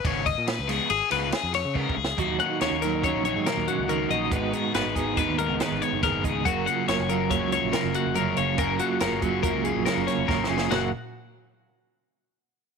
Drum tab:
CC |------------------------------|------------------------------|------------------------------|------------------------------|
RD |x--x--x--x--x--x--x--x--------|------------------------------|------------------------------|------------------------------|
HH |------------------------------|x--x--x--x--x--x--x--x--x--x--|x--x--x--x--x--x--x--x--x--x--|x--x--x--x--x--x--x--x--x--x--|
SD |------o--o-----o--o--o------o-|------o--o--------o-----------|------o-----------o-----o-----|------o-----------o-----------|
FT |------------------------------|------------------------------|------------------------------|------------------------------|
BD |o--o--------------------o-o---|o-----------o-----------------|o--------o--o-----------o--o--|o-----------o-----------------|

CC |------------------------------|x-----------------------------|
RD |------------------------------|------------------------------|
HH |x--x--x--x--x--x--x--x--------|------------------------------|
SD |------o-----------o--o--o-o-o-|o-----------------------------|
FT |------------------------------|o-----------------------------|
BD |o--------o--o-----------o-----|------------------------------|